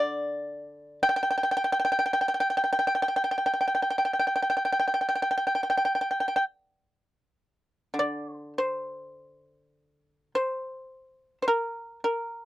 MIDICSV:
0, 0, Header, 1, 2, 480
1, 0, Start_track
1, 0, Tempo, 1079137
1, 936, Tempo, 1123596
1, 1409, Time_signature, 4, 2, 24, 8
1, 1896, Tempo, 1165049
1, 2376, Tempo, 1226994
1, 3336, Tempo, 1185771
1, 4296, Tempo, 1127820
1, 5193, End_track
2, 0, Start_track
2, 0, Title_t, "Pipa"
2, 0, Program_c, 0, 105
2, 0, Note_on_c, 0, 50, 62
2, 0, Note_on_c, 0, 74, 88
2, 439, Note_off_c, 0, 74, 0
2, 457, Note_on_c, 0, 79, 83
2, 480, Note_off_c, 0, 79, 0
2, 485, Note_on_c, 0, 79, 66
2, 512, Note_off_c, 0, 79, 0
2, 517, Note_on_c, 0, 79, 69
2, 541, Note_off_c, 0, 79, 0
2, 546, Note_on_c, 0, 79, 58
2, 575, Note_off_c, 0, 79, 0
2, 581, Note_on_c, 0, 79, 61
2, 607, Note_off_c, 0, 79, 0
2, 612, Note_on_c, 0, 79, 53
2, 632, Note_off_c, 0, 79, 0
2, 637, Note_on_c, 0, 79, 58
2, 668, Note_off_c, 0, 79, 0
2, 673, Note_on_c, 0, 79, 57
2, 692, Note_off_c, 0, 79, 0
2, 697, Note_on_c, 0, 79, 64
2, 725, Note_off_c, 0, 79, 0
2, 730, Note_on_c, 0, 79, 61
2, 761, Note_off_c, 0, 79, 0
2, 767, Note_on_c, 0, 79, 67
2, 793, Note_off_c, 0, 79, 0
2, 799, Note_on_c, 0, 79, 54
2, 816, Note_off_c, 0, 79, 0
2, 822, Note_on_c, 0, 79, 59
2, 848, Note_off_c, 0, 79, 0
2, 853, Note_on_c, 0, 79, 53
2, 879, Note_off_c, 0, 79, 0
2, 884, Note_on_c, 0, 79, 58
2, 910, Note_off_c, 0, 79, 0
2, 915, Note_on_c, 0, 79, 51
2, 943, Note_off_c, 0, 79, 0
2, 948, Note_on_c, 0, 79, 58
2, 976, Note_off_c, 0, 79, 0
2, 981, Note_on_c, 0, 79, 49
2, 1007, Note_off_c, 0, 79, 0
2, 1012, Note_on_c, 0, 79, 52
2, 1033, Note_off_c, 0, 79, 0
2, 1038, Note_on_c, 0, 79, 50
2, 1058, Note_off_c, 0, 79, 0
2, 1063, Note_on_c, 0, 79, 60
2, 1097, Note_off_c, 0, 79, 0
2, 1105, Note_on_c, 0, 79, 52
2, 1130, Note_off_c, 0, 79, 0
2, 1135, Note_on_c, 0, 79, 55
2, 1159, Note_off_c, 0, 79, 0
2, 1164, Note_on_c, 0, 79, 48
2, 1193, Note_off_c, 0, 79, 0
2, 1201, Note_on_c, 0, 79, 59
2, 1223, Note_off_c, 0, 79, 0
2, 1228, Note_on_c, 0, 79, 49
2, 1257, Note_off_c, 0, 79, 0
2, 1264, Note_on_c, 0, 79, 57
2, 1290, Note_off_c, 0, 79, 0
2, 1297, Note_on_c, 0, 79, 47
2, 1323, Note_off_c, 0, 79, 0
2, 1328, Note_on_c, 0, 79, 56
2, 1349, Note_off_c, 0, 79, 0
2, 1354, Note_on_c, 0, 79, 45
2, 1383, Note_off_c, 0, 79, 0
2, 1388, Note_on_c, 0, 79, 55
2, 1402, Note_off_c, 0, 50, 0
2, 1416, Note_off_c, 0, 79, 0
2, 1421, Note_on_c, 0, 79, 49
2, 1447, Note_off_c, 0, 79, 0
2, 1452, Note_on_c, 0, 79, 52
2, 1475, Note_off_c, 0, 79, 0
2, 1480, Note_on_c, 0, 79, 44
2, 1509, Note_off_c, 0, 79, 0
2, 1515, Note_on_c, 0, 79, 52
2, 1543, Note_off_c, 0, 79, 0
2, 1547, Note_on_c, 0, 79, 38
2, 1573, Note_off_c, 0, 79, 0
2, 1578, Note_on_c, 0, 79, 44
2, 1602, Note_off_c, 0, 79, 0
2, 1607, Note_on_c, 0, 79, 44
2, 1633, Note_off_c, 0, 79, 0
2, 1638, Note_on_c, 0, 79, 48
2, 1665, Note_off_c, 0, 79, 0
2, 1670, Note_on_c, 0, 79, 44
2, 1700, Note_off_c, 0, 79, 0
2, 1705, Note_on_c, 0, 79, 51
2, 1733, Note_off_c, 0, 79, 0
2, 1738, Note_on_c, 0, 79, 46
2, 1762, Note_off_c, 0, 79, 0
2, 1767, Note_on_c, 0, 79, 50
2, 1795, Note_off_c, 0, 79, 0
2, 1803, Note_on_c, 0, 79, 40
2, 1824, Note_off_c, 0, 79, 0
2, 1829, Note_on_c, 0, 79, 50
2, 1856, Note_off_c, 0, 79, 0
2, 1861, Note_on_c, 0, 79, 40
2, 1890, Note_off_c, 0, 79, 0
2, 1898, Note_on_c, 0, 79, 51
2, 1921, Note_off_c, 0, 79, 0
2, 1926, Note_on_c, 0, 79, 44
2, 1951, Note_off_c, 0, 79, 0
2, 1956, Note_on_c, 0, 79, 52
2, 1980, Note_off_c, 0, 79, 0
2, 1985, Note_on_c, 0, 79, 44
2, 2013, Note_off_c, 0, 79, 0
2, 2019, Note_on_c, 0, 79, 52
2, 2045, Note_off_c, 0, 79, 0
2, 2050, Note_on_c, 0, 79, 48
2, 2074, Note_off_c, 0, 79, 0
2, 2079, Note_on_c, 0, 79, 50
2, 2106, Note_off_c, 0, 79, 0
2, 2112, Note_on_c, 0, 79, 43
2, 2133, Note_off_c, 0, 79, 0
2, 2138, Note_on_c, 0, 79, 49
2, 2162, Note_off_c, 0, 79, 0
2, 2167, Note_on_c, 0, 79, 39
2, 2194, Note_off_c, 0, 79, 0
2, 2199, Note_on_c, 0, 79, 46
2, 2222, Note_off_c, 0, 79, 0
2, 2227, Note_on_c, 0, 79, 45
2, 2250, Note_off_c, 0, 79, 0
2, 2255, Note_on_c, 0, 79, 53
2, 2285, Note_off_c, 0, 79, 0
2, 2290, Note_on_c, 0, 79, 45
2, 2313, Note_off_c, 0, 79, 0
2, 2318, Note_on_c, 0, 79, 51
2, 2351, Note_off_c, 0, 79, 0
2, 2356, Note_on_c, 0, 79, 49
2, 2384, Note_off_c, 0, 79, 0
2, 2389, Note_on_c, 0, 79, 53
2, 2416, Note_off_c, 0, 79, 0
2, 2421, Note_on_c, 0, 79, 46
2, 2442, Note_off_c, 0, 79, 0
2, 2447, Note_on_c, 0, 79, 52
2, 2472, Note_off_c, 0, 79, 0
2, 2477, Note_on_c, 0, 79, 50
2, 2502, Note_off_c, 0, 79, 0
2, 2506, Note_on_c, 0, 79, 49
2, 2538, Note_off_c, 0, 79, 0
2, 2546, Note_on_c, 0, 79, 45
2, 2565, Note_off_c, 0, 79, 0
2, 2569, Note_on_c, 0, 79, 46
2, 2601, Note_off_c, 0, 79, 0
2, 2607, Note_on_c, 0, 79, 39
2, 2636, Note_off_c, 0, 79, 0
2, 2644, Note_on_c, 0, 79, 48
2, 2670, Note_off_c, 0, 79, 0
2, 2674, Note_on_c, 0, 79, 46
2, 2701, Note_off_c, 0, 79, 0
2, 2706, Note_on_c, 0, 79, 57
2, 2733, Note_off_c, 0, 79, 0
2, 3323, Note_on_c, 0, 50, 48
2, 3344, Note_on_c, 0, 74, 67
2, 3486, Note_off_c, 0, 74, 0
2, 3486, Note_on_c, 0, 72, 67
2, 3562, Note_off_c, 0, 72, 0
2, 3584, Note_on_c, 0, 72, 64
2, 4285, Note_off_c, 0, 72, 0
2, 4300, Note_on_c, 0, 72, 64
2, 4737, Note_off_c, 0, 72, 0
2, 4757, Note_on_c, 0, 72, 49
2, 4773, Note_off_c, 0, 50, 0
2, 4777, Note_off_c, 0, 72, 0
2, 4779, Note_on_c, 0, 70, 65
2, 4999, Note_off_c, 0, 70, 0
2, 5019, Note_on_c, 0, 70, 64
2, 5193, Note_off_c, 0, 70, 0
2, 5193, End_track
0, 0, End_of_file